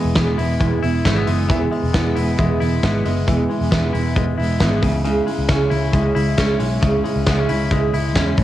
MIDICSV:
0, 0, Header, 1, 5, 480
1, 0, Start_track
1, 0, Tempo, 444115
1, 1616, Time_signature, 4, 2, 24, 8
1, 9119, End_track
2, 0, Start_track
2, 0, Title_t, "Clean electric guitar"
2, 0, Program_c, 0, 27
2, 0, Note_on_c, 0, 52, 62
2, 0, Note_on_c, 0, 59, 56
2, 0, Note_on_c, 0, 64, 57
2, 154, Note_off_c, 0, 59, 0
2, 406, Note_off_c, 0, 64, 0
2, 1136, Note_on_c, 0, 57, 56
2, 1255, Note_off_c, 0, 57, 0
2, 1255, Note_on_c, 0, 59, 49
2, 1603, Note_off_c, 0, 52, 0
2, 2075, Note_off_c, 0, 59, 0
2, 5214, Note_on_c, 0, 49, 65
2, 5439, Note_off_c, 0, 49, 0
2, 7853, Note_on_c, 0, 59, 56
2, 7984, Note_off_c, 0, 59, 0
2, 7984, Note_on_c, 0, 61, 44
2, 8802, Note_off_c, 0, 61, 0
2, 9053, Note_on_c, 0, 45, 72
2, 9119, Note_off_c, 0, 45, 0
2, 9119, End_track
3, 0, Start_track
3, 0, Title_t, "Steel-string acoustic guitar"
3, 0, Program_c, 1, 25
3, 0, Note_on_c, 1, 56, 46
3, 0, Note_on_c, 1, 59, 47
3, 0, Note_on_c, 1, 64, 50
3, 151, Note_off_c, 1, 56, 0
3, 154, Note_off_c, 1, 59, 0
3, 159, Note_off_c, 1, 64, 0
3, 159, Note_on_c, 1, 52, 84
3, 164, Note_on_c, 1, 56, 83
3, 167, Note_on_c, 1, 59, 85
3, 172, Note_on_c, 1, 64, 97
3, 394, Note_off_c, 1, 64, 0
3, 407, Note_off_c, 1, 52, 0
3, 407, Note_on_c, 1, 64, 55
3, 409, Note_off_c, 1, 56, 0
3, 411, Note_off_c, 1, 59, 0
3, 422, Note_on_c, 1, 59, 49
3, 424, Note_on_c, 1, 56, 44
3, 643, Note_off_c, 1, 56, 0
3, 647, Note_on_c, 1, 52, 55
3, 651, Note_off_c, 1, 64, 0
3, 652, Note_off_c, 1, 59, 0
3, 656, Note_on_c, 1, 56, 61
3, 665, Note_on_c, 1, 59, 63
3, 670, Note_on_c, 1, 64, 70
3, 880, Note_off_c, 1, 64, 0
3, 891, Note_off_c, 1, 52, 0
3, 892, Note_off_c, 1, 59, 0
3, 893, Note_on_c, 1, 64, 56
3, 895, Note_off_c, 1, 56, 0
3, 905, Note_on_c, 1, 59, 54
3, 914, Note_on_c, 1, 56, 41
3, 1122, Note_off_c, 1, 56, 0
3, 1130, Note_off_c, 1, 59, 0
3, 1134, Note_off_c, 1, 64, 0
3, 1135, Note_on_c, 1, 56, 68
3, 1136, Note_on_c, 1, 52, 72
3, 1143, Note_on_c, 1, 59, 78
3, 1146, Note_on_c, 1, 64, 77
3, 1353, Note_off_c, 1, 64, 0
3, 1365, Note_off_c, 1, 59, 0
3, 1366, Note_on_c, 1, 64, 55
3, 1372, Note_off_c, 1, 56, 0
3, 1376, Note_off_c, 1, 52, 0
3, 1378, Note_on_c, 1, 59, 54
3, 1385, Note_on_c, 1, 56, 46
3, 1611, Note_off_c, 1, 64, 0
3, 1614, Note_off_c, 1, 56, 0
3, 1617, Note_off_c, 1, 59, 0
3, 1619, Note_on_c, 1, 52, 87
3, 1627, Note_on_c, 1, 56, 78
3, 1630, Note_on_c, 1, 64, 92
3, 1635, Note_on_c, 1, 59, 95
3, 1839, Note_off_c, 1, 64, 0
3, 1852, Note_off_c, 1, 59, 0
3, 1852, Note_on_c, 1, 64, 55
3, 1856, Note_off_c, 1, 56, 0
3, 1858, Note_off_c, 1, 52, 0
3, 1865, Note_on_c, 1, 59, 43
3, 1869, Note_on_c, 1, 56, 41
3, 2091, Note_off_c, 1, 56, 0
3, 2094, Note_off_c, 1, 64, 0
3, 2097, Note_off_c, 1, 59, 0
3, 2100, Note_on_c, 1, 52, 77
3, 2104, Note_on_c, 1, 56, 90
3, 2110, Note_on_c, 1, 59, 83
3, 2110, Note_on_c, 1, 64, 96
3, 2330, Note_off_c, 1, 64, 0
3, 2338, Note_off_c, 1, 52, 0
3, 2340, Note_off_c, 1, 56, 0
3, 2343, Note_on_c, 1, 64, 55
3, 2344, Note_off_c, 1, 59, 0
3, 2355, Note_on_c, 1, 59, 55
3, 2367, Note_on_c, 1, 56, 49
3, 2565, Note_off_c, 1, 59, 0
3, 2567, Note_off_c, 1, 56, 0
3, 2567, Note_on_c, 1, 52, 65
3, 2576, Note_off_c, 1, 64, 0
3, 2578, Note_on_c, 1, 59, 64
3, 2580, Note_on_c, 1, 56, 61
3, 2589, Note_on_c, 1, 64, 72
3, 2805, Note_off_c, 1, 64, 0
3, 2812, Note_off_c, 1, 52, 0
3, 2818, Note_off_c, 1, 59, 0
3, 2818, Note_on_c, 1, 64, 52
3, 2819, Note_off_c, 1, 56, 0
3, 2831, Note_on_c, 1, 59, 53
3, 2834, Note_on_c, 1, 56, 45
3, 3048, Note_off_c, 1, 56, 0
3, 3052, Note_off_c, 1, 59, 0
3, 3057, Note_on_c, 1, 52, 76
3, 3058, Note_off_c, 1, 64, 0
3, 3061, Note_on_c, 1, 56, 77
3, 3065, Note_on_c, 1, 59, 83
3, 3070, Note_on_c, 1, 64, 77
3, 3286, Note_off_c, 1, 64, 0
3, 3295, Note_off_c, 1, 59, 0
3, 3297, Note_off_c, 1, 52, 0
3, 3299, Note_off_c, 1, 56, 0
3, 3299, Note_on_c, 1, 64, 61
3, 3308, Note_on_c, 1, 59, 56
3, 3318, Note_on_c, 1, 56, 47
3, 3526, Note_off_c, 1, 56, 0
3, 3527, Note_off_c, 1, 59, 0
3, 3533, Note_on_c, 1, 52, 83
3, 3535, Note_off_c, 1, 64, 0
3, 3539, Note_on_c, 1, 56, 81
3, 3540, Note_on_c, 1, 59, 91
3, 3548, Note_on_c, 1, 64, 85
3, 3762, Note_off_c, 1, 64, 0
3, 3772, Note_off_c, 1, 59, 0
3, 3775, Note_on_c, 1, 64, 60
3, 3776, Note_off_c, 1, 52, 0
3, 3779, Note_off_c, 1, 56, 0
3, 3785, Note_on_c, 1, 59, 52
3, 3794, Note_on_c, 1, 56, 45
3, 4000, Note_off_c, 1, 56, 0
3, 4001, Note_off_c, 1, 59, 0
3, 4006, Note_on_c, 1, 52, 82
3, 4008, Note_off_c, 1, 64, 0
3, 4013, Note_on_c, 1, 56, 81
3, 4014, Note_on_c, 1, 59, 86
3, 4021, Note_on_c, 1, 64, 97
3, 4235, Note_off_c, 1, 64, 0
3, 4248, Note_on_c, 1, 64, 49
3, 4251, Note_off_c, 1, 59, 0
3, 4252, Note_off_c, 1, 52, 0
3, 4255, Note_off_c, 1, 56, 0
3, 4264, Note_on_c, 1, 59, 50
3, 4270, Note_on_c, 1, 56, 40
3, 4488, Note_off_c, 1, 56, 0
3, 4489, Note_off_c, 1, 59, 0
3, 4489, Note_on_c, 1, 52, 62
3, 4493, Note_off_c, 1, 64, 0
3, 4501, Note_on_c, 1, 56, 59
3, 4502, Note_on_c, 1, 59, 65
3, 4512, Note_on_c, 1, 64, 65
3, 4720, Note_off_c, 1, 64, 0
3, 4732, Note_off_c, 1, 59, 0
3, 4733, Note_on_c, 1, 64, 54
3, 4734, Note_off_c, 1, 52, 0
3, 4739, Note_off_c, 1, 56, 0
3, 4745, Note_on_c, 1, 59, 48
3, 4754, Note_on_c, 1, 56, 42
3, 4975, Note_off_c, 1, 64, 0
3, 4980, Note_off_c, 1, 56, 0
3, 4981, Note_off_c, 1, 59, 0
3, 4984, Note_on_c, 1, 52, 65
3, 4993, Note_on_c, 1, 56, 71
3, 4996, Note_on_c, 1, 59, 80
3, 4996, Note_on_c, 1, 64, 88
3, 5212, Note_off_c, 1, 64, 0
3, 5221, Note_off_c, 1, 52, 0
3, 5225, Note_off_c, 1, 56, 0
3, 5225, Note_on_c, 1, 64, 56
3, 5227, Note_off_c, 1, 59, 0
3, 5234, Note_on_c, 1, 61, 47
3, 5243, Note_on_c, 1, 56, 45
3, 5447, Note_off_c, 1, 56, 0
3, 5450, Note_off_c, 1, 61, 0
3, 5457, Note_off_c, 1, 64, 0
3, 5459, Note_on_c, 1, 49, 80
3, 5460, Note_on_c, 1, 56, 79
3, 5463, Note_on_c, 1, 61, 81
3, 5470, Note_on_c, 1, 64, 90
3, 5678, Note_off_c, 1, 64, 0
3, 5691, Note_on_c, 1, 64, 59
3, 5693, Note_off_c, 1, 61, 0
3, 5698, Note_off_c, 1, 49, 0
3, 5699, Note_off_c, 1, 56, 0
3, 5706, Note_on_c, 1, 61, 48
3, 5716, Note_on_c, 1, 56, 46
3, 5918, Note_off_c, 1, 56, 0
3, 5922, Note_off_c, 1, 64, 0
3, 5923, Note_off_c, 1, 61, 0
3, 5926, Note_on_c, 1, 49, 73
3, 5931, Note_on_c, 1, 56, 80
3, 5935, Note_on_c, 1, 64, 90
3, 5936, Note_on_c, 1, 61, 96
3, 6155, Note_off_c, 1, 64, 0
3, 6168, Note_on_c, 1, 64, 55
3, 6171, Note_off_c, 1, 61, 0
3, 6172, Note_off_c, 1, 49, 0
3, 6174, Note_off_c, 1, 56, 0
3, 6183, Note_on_c, 1, 61, 47
3, 6191, Note_on_c, 1, 56, 45
3, 6408, Note_off_c, 1, 56, 0
3, 6412, Note_on_c, 1, 49, 56
3, 6413, Note_off_c, 1, 61, 0
3, 6413, Note_off_c, 1, 64, 0
3, 6421, Note_on_c, 1, 56, 71
3, 6426, Note_on_c, 1, 61, 65
3, 6432, Note_on_c, 1, 64, 72
3, 6646, Note_off_c, 1, 64, 0
3, 6655, Note_off_c, 1, 49, 0
3, 6657, Note_off_c, 1, 61, 0
3, 6659, Note_off_c, 1, 56, 0
3, 6659, Note_on_c, 1, 64, 54
3, 6670, Note_on_c, 1, 61, 52
3, 6681, Note_on_c, 1, 56, 45
3, 6895, Note_off_c, 1, 56, 0
3, 6895, Note_off_c, 1, 61, 0
3, 6898, Note_off_c, 1, 64, 0
3, 6899, Note_on_c, 1, 49, 75
3, 6908, Note_on_c, 1, 56, 72
3, 6908, Note_on_c, 1, 61, 84
3, 6913, Note_on_c, 1, 64, 81
3, 7122, Note_off_c, 1, 64, 0
3, 7130, Note_off_c, 1, 61, 0
3, 7135, Note_on_c, 1, 64, 57
3, 7138, Note_off_c, 1, 49, 0
3, 7140, Note_off_c, 1, 56, 0
3, 7143, Note_on_c, 1, 61, 51
3, 7153, Note_on_c, 1, 56, 45
3, 7363, Note_off_c, 1, 56, 0
3, 7365, Note_off_c, 1, 61, 0
3, 7373, Note_on_c, 1, 49, 86
3, 7376, Note_off_c, 1, 64, 0
3, 7376, Note_on_c, 1, 56, 79
3, 7378, Note_on_c, 1, 61, 89
3, 7387, Note_on_c, 1, 64, 84
3, 7602, Note_off_c, 1, 64, 0
3, 7611, Note_off_c, 1, 61, 0
3, 7615, Note_off_c, 1, 49, 0
3, 7615, Note_on_c, 1, 64, 54
3, 7617, Note_off_c, 1, 56, 0
3, 7624, Note_on_c, 1, 61, 47
3, 7634, Note_on_c, 1, 56, 44
3, 7856, Note_off_c, 1, 64, 0
3, 7857, Note_off_c, 1, 56, 0
3, 7860, Note_off_c, 1, 61, 0
3, 7864, Note_on_c, 1, 49, 79
3, 7870, Note_on_c, 1, 56, 86
3, 7874, Note_on_c, 1, 61, 96
3, 7878, Note_on_c, 1, 64, 96
3, 8088, Note_off_c, 1, 64, 0
3, 8099, Note_off_c, 1, 61, 0
3, 8100, Note_off_c, 1, 49, 0
3, 8101, Note_on_c, 1, 64, 55
3, 8103, Note_off_c, 1, 56, 0
3, 8112, Note_on_c, 1, 61, 51
3, 8121, Note_on_c, 1, 56, 45
3, 8337, Note_on_c, 1, 49, 62
3, 8339, Note_off_c, 1, 56, 0
3, 8339, Note_off_c, 1, 64, 0
3, 8342, Note_off_c, 1, 61, 0
3, 8352, Note_on_c, 1, 56, 67
3, 8355, Note_on_c, 1, 61, 64
3, 8356, Note_on_c, 1, 64, 67
3, 8560, Note_off_c, 1, 64, 0
3, 8569, Note_off_c, 1, 61, 0
3, 8572, Note_on_c, 1, 64, 51
3, 8577, Note_off_c, 1, 49, 0
3, 8577, Note_off_c, 1, 56, 0
3, 8582, Note_on_c, 1, 61, 43
3, 8590, Note_on_c, 1, 56, 43
3, 8803, Note_off_c, 1, 56, 0
3, 8807, Note_off_c, 1, 61, 0
3, 8808, Note_on_c, 1, 49, 68
3, 8811, Note_off_c, 1, 64, 0
3, 8816, Note_on_c, 1, 56, 72
3, 8820, Note_on_c, 1, 61, 78
3, 8824, Note_on_c, 1, 64, 81
3, 9040, Note_off_c, 1, 64, 0
3, 9046, Note_off_c, 1, 61, 0
3, 9052, Note_off_c, 1, 49, 0
3, 9053, Note_on_c, 1, 64, 51
3, 9056, Note_off_c, 1, 56, 0
3, 9059, Note_on_c, 1, 61, 50
3, 9071, Note_on_c, 1, 57, 54
3, 9119, Note_off_c, 1, 57, 0
3, 9119, Note_off_c, 1, 61, 0
3, 9119, Note_off_c, 1, 64, 0
3, 9119, End_track
4, 0, Start_track
4, 0, Title_t, "Picked electric bass"
4, 0, Program_c, 2, 34
4, 54, Note_on_c, 2, 28, 82
4, 153, Note_off_c, 2, 28, 0
4, 414, Note_on_c, 2, 28, 84
4, 611, Note_off_c, 2, 28, 0
4, 656, Note_on_c, 2, 28, 88
4, 853, Note_off_c, 2, 28, 0
4, 905, Note_on_c, 2, 28, 86
4, 1098, Note_off_c, 2, 28, 0
4, 1139, Note_on_c, 2, 32, 92
4, 1334, Note_off_c, 2, 32, 0
4, 1381, Note_on_c, 2, 30, 85
4, 1617, Note_off_c, 2, 30, 0
4, 1617, Note_on_c, 2, 28, 87
4, 1814, Note_off_c, 2, 28, 0
4, 1980, Note_on_c, 2, 28, 85
4, 2077, Note_off_c, 2, 28, 0
4, 2098, Note_on_c, 2, 28, 105
4, 2294, Note_off_c, 2, 28, 0
4, 2336, Note_on_c, 2, 28, 84
4, 2533, Note_off_c, 2, 28, 0
4, 2582, Note_on_c, 2, 28, 83
4, 2777, Note_off_c, 2, 28, 0
4, 2820, Note_on_c, 2, 28, 93
4, 3016, Note_off_c, 2, 28, 0
4, 3063, Note_on_c, 2, 32, 86
4, 3258, Note_off_c, 2, 32, 0
4, 3307, Note_on_c, 2, 30, 73
4, 3500, Note_off_c, 2, 30, 0
4, 3544, Note_on_c, 2, 28, 90
4, 3738, Note_off_c, 2, 28, 0
4, 3904, Note_on_c, 2, 28, 94
4, 4000, Note_off_c, 2, 28, 0
4, 4263, Note_on_c, 2, 28, 89
4, 4458, Note_off_c, 2, 28, 0
4, 4498, Note_on_c, 2, 28, 88
4, 4695, Note_off_c, 2, 28, 0
4, 4740, Note_on_c, 2, 28, 88
4, 4936, Note_off_c, 2, 28, 0
4, 4976, Note_on_c, 2, 32, 82
4, 5174, Note_off_c, 2, 32, 0
4, 5219, Note_on_c, 2, 37, 80
4, 5612, Note_off_c, 2, 37, 0
4, 5821, Note_on_c, 2, 37, 72
4, 5918, Note_off_c, 2, 37, 0
4, 5933, Note_on_c, 2, 37, 96
4, 6132, Note_off_c, 2, 37, 0
4, 6175, Note_on_c, 2, 37, 96
4, 6373, Note_off_c, 2, 37, 0
4, 6413, Note_on_c, 2, 37, 93
4, 6612, Note_off_c, 2, 37, 0
4, 6653, Note_on_c, 2, 37, 110
4, 6852, Note_off_c, 2, 37, 0
4, 6895, Note_on_c, 2, 37, 78
4, 7093, Note_off_c, 2, 37, 0
4, 7135, Note_on_c, 2, 35, 81
4, 7333, Note_off_c, 2, 35, 0
4, 7376, Note_on_c, 2, 37, 90
4, 7573, Note_off_c, 2, 37, 0
4, 7736, Note_on_c, 2, 37, 78
4, 7835, Note_off_c, 2, 37, 0
4, 7855, Note_on_c, 2, 37, 102
4, 8052, Note_off_c, 2, 37, 0
4, 8099, Note_on_c, 2, 37, 80
4, 8295, Note_off_c, 2, 37, 0
4, 8337, Note_on_c, 2, 37, 83
4, 8533, Note_off_c, 2, 37, 0
4, 8576, Note_on_c, 2, 37, 91
4, 8814, Note_off_c, 2, 37, 0
4, 8814, Note_on_c, 2, 40, 85
4, 9012, Note_off_c, 2, 40, 0
4, 9054, Note_on_c, 2, 33, 90
4, 9119, Note_off_c, 2, 33, 0
4, 9119, End_track
5, 0, Start_track
5, 0, Title_t, "Drums"
5, 167, Note_on_c, 9, 38, 92
5, 168, Note_on_c, 9, 42, 70
5, 172, Note_on_c, 9, 36, 99
5, 275, Note_off_c, 9, 38, 0
5, 276, Note_off_c, 9, 42, 0
5, 280, Note_off_c, 9, 36, 0
5, 420, Note_on_c, 9, 46, 65
5, 528, Note_off_c, 9, 46, 0
5, 655, Note_on_c, 9, 36, 89
5, 660, Note_on_c, 9, 42, 61
5, 763, Note_off_c, 9, 36, 0
5, 769, Note_off_c, 9, 42, 0
5, 903, Note_on_c, 9, 46, 50
5, 1011, Note_off_c, 9, 46, 0
5, 1135, Note_on_c, 9, 42, 69
5, 1136, Note_on_c, 9, 36, 96
5, 1140, Note_on_c, 9, 38, 97
5, 1243, Note_off_c, 9, 42, 0
5, 1244, Note_off_c, 9, 36, 0
5, 1248, Note_off_c, 9, 38, 0
5, 1374, Note_on_c, 9, 46, 65
5, 1482, Note_off_c, 9, 46, 0
5, 1617, Note_on_c, 9, 42, 70
5, 1618, Note_on_c, 9, 36, 100
5, 1725, Note_off_c, 9, 42, 0
5, 1726, Note_off_c, 9, 36, 0
5, 1863, Note_on_c, 9, 46, 52
5, 1971, Note_off_c, 9, 46, 0
5, 2098, Note_on_c, 9, 36, 105
5, 2098, Note_on_c, 9, 38, 95
5, 2098, Note_on_c, 9, 42, 69
5, 2206, Note_off_c, 9, 38, 0
5, 2207, Note_off_c, 9, 36, 0
5, 2207, Note_off_c, 9, 42, 0
5, 2339, Note_on_c, 9, 46, 69
5, 2447, Note_off_c, 9, 46, 0
5, 2581, Note_on_c, 9, 36, 92
5, 2588, Note_on_c, 9, 42, 54
5, 2689, Note_off_c, 9, 36, 0
5, 2696, Note_off_c, 9, 42, 0
5, 2828, Note_on_c, 9, 46, 50
5, 2936, Note_off_c, 9, 46, 0
5, 3063, Note_on_c, 9, 36, 86
5, 3063, Note_on_c, 9, 42, 60
5, 3067, Note_on_c, 9, 38, 103
5, 3171, Note_off_c, 9, 36, 0
5, 3171, Note_off_c, 9, 42, 0
5, 3175, Note_off_c, 9, 38, 0
5, 3303, Note_on_c, 9, 46, 73
5, 3411, Note_off_c, 9, 46, 0
5, 3544, Note_on_c, 9, 36, 100
5, 3545, Note_on_c, 9, 42, 68
5, 3652, Note_off_c, 9, 36, 0
5, 3653, Note_off_c, 9, 42, 0
5, 3791, Note_on_c, 9, 46, 56
5, 3899, Note_off_c, 9, 46, 0
5, 4021, Note_on_c, 9, 36, 94
5, 4021, Note_on_c, 9, 38, 95
5, 4022, Note_on_c, 9, 42, 75
5, 4129, Note_off_c, 9, 36, 0
5, 4129, Note_off_c, 9, 38, 0
5, 4130, Note_off_c, 9, 42, 0
5, 4268, Note_on_c, 9, 46, 67
5, 4376, Note_off_c, 9, 46, 0
5, 4498, Note_on_c, 9, 36, 93
5, 4503, Note_on_c, 9, 42, 67
5, 4606, Note_off_c, 9, 36, 0
5, 4611, Note_off_c, 9, 42, 0
5, 4748, Note_on_c, 9, 46, 58
5, 4856, Note_off_c, 9, 46, 0
5, 4971, Note_on_c, 9, 42, 62
5, 4976, Note_on_c, 9, 36, 93
5, 4976, Note_on_c, 9, 38, 96
5, 5080, Note_off_c, 9, 42, 0
5, 5084, Note_off_c, 9, 36, 0
5, 5084, Note_off_c, 9, 38, 0
5, 5215, Note_on_c, 9, 46, 60
5, 5216, Note_on_c, 9, 36, 92
5, 5323, Note_off_c, 9, 46, 0
5, 5324, Note_off_c, 9, 36, 0
5, 5461, Note_on_c, 9, 42, 71
5, 5569, Note_off_c, 9, 42, 0
5, 5702, Note_on_c, 9, 46, 53
5, 5810, Note_off_c, 9, 46, 0
5, 5930, Note_on_c, 9, 38, 91
5, 5930, Note_on_c, 9, 42, 74
5, 5933, Note_on_c, 9, 36, 102
5, 6038, Note_off_c, 9, 38, 0
5, 6038, Note_off_c, 9, 42, 0
5, 6042, Note_off_c, 9, 36, 0
5, 6175, Note_on_c, 9, 46, 70
5, 6283, Note_off_c, 9, 46, 0
5, 6414, Note_on_c, 9, 36, 86
5, 6422, Note_on_c, 9, 42, 60
5, 6522, Note_off_c, 9, 36, 0
5, 6530, Note_off_c, 9, 42, 0
5, 6662, Note_on_c, 9, 46, 58
5, 6770, Note_off_c, 9, 46, 0
5, 6892, Note_on_c, 9, 42, 70
5, 6895, Note_on_c, 9, 36, 92
5, 6896, Note_on_c, 9, 38, 105
5, 7000, Note_off_c, 9, 42, 0
5, 7003, Note_off_c, 9, 36, 0
5, 7004, Note_off_c, 9, 38, 0
5, 7131, Note_on_c, 9, 46, 64
5, 7240, Note_off_c, 9, 46, 0
5, 7378, Note_on_c, 9, 36, 108
5, 7379, Note_on_c, 9, 42, 74
5, 7486, Note_off_c, 9, 36, 0
5, 7487, Note_off_c, 9, 42, 0
5, 7624, Note_on_c, 9, 46, 55
5, 7732, Note_off_c, 9, 46, 0
5, 7852, Note_on_c, 9, 38, 101
5, 7852, Note_on_c, 9, 42, 76
5, 7856, Note_on_c, 9, 36, 100
5, 7960, Note_off_c, 9, 38, 0
5, 7960, Note_off_c, 9, 42, 0
5, 7964, Note_off_c, 9, 36, 0
5, 8094, Note_on_c, 9, 46, 64
5, 8202, Note_off_c, 9, 46, 0
5, 8334, Note_on_c, 9, 36, 94
5, 8334, Note_on_c, 9, 42, 65
5, 8442, Note_off_c, 9, 36, 0
5, 8442, Note_off_c, 9, 42, 0
5, 8583, Note_on_c, 9, 46, 53
5, 8691, Note_off_c, 9, 46, 0
5, 8813, Note_on_c, 9, 42, 70
5, 8814, Note_on_c, 9, 36, 90
5, 8817, Note_on_c, 9, 38, 98
5, 8921, Note_off_c, 9, 42, 0
5, 8922, Note_off_c, 9, 36, 0
5, 8926, Note_off_c, 9, 38, 0
5, 9050, Note_on_c, 9, 46, 66
5, 9055, Note_on_c, 9, 36, 97
5, 9119, Note_off_c, 9, 36, 0
5, 9119, Note_off_c, 9, 46, 0
5, 9119, End_track
0, 0, End_of_file